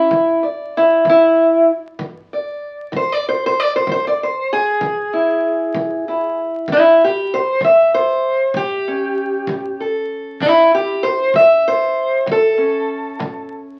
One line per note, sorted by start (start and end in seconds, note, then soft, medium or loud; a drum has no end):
0.00 0.44 E4 medium
0.11 0.68 E3 medium
0.11 kick medium
0.43 2.31 D5 soft
0.77 1.07 E4 medium
1.05 1.62 E3 medium
1.05 kick medium
1.09 1.70 E4 medium
1.99 2.56 E3 medium
1.99 kick medium
2.33 2.95 D5 soft
2.92 3.49 E3 medium
2.92 kick medium
2.96 3.12 C5 loud
3.12 3.26 D5 medium
3.29 3.42 C5 medium
3.46 3.60 C5 loud
3.60 3.74 D5 medium
3.76 3.89 C5 medium
3.87 4.43 E3 medium
3.87 kick medium
3.92 4.05 C5 loud
4.07 4.21 D5 medium
4.23 4.52 C5 medium
4.53 6.39 G#4 loud
4.81 5.37 E3 medium
4.81 kick medium
5.13 6.08 E4 soft
5.75 6.31 E3 medium
5.75 kick medium
6.08 6.72 E4 soft
6.68 7.25 E3 medium
6.68 kick medium
6.72 7.01 E4 medium
7.04 7.33 G4 medium
7.34 7.63 C5 medium
7.61 8.18 A2 medium
7.61 7.94 E5 loud
7.61 kick medium
7.94 8.56 C5 loud
8.54 9.11 A2 medium
8.54 9.80 G4 loud
8.54 kick medium
8.88 11.71 C#4 soft
9.47 10.05 A2 medium
9.47 kick medium
9.80 11.03 A4 soft
10.40 10.98 A2 medium
10.40 10.73 E4 loud
10.40 kick medium
10.74 11.05 G4 loud
11.03 11.35 C5 medium
11.34 11.91 A2 medium
11.34 11.66 E5 loud
11.34 kick medium
11.68 12.29 C5 loud
12.26 12.83 A2 medium
12.26 kick medium
12.31 13.54 A4 loud
12.58 13.79 C#4 soft
13.19 13.76 A2 medium
13.19 kick medium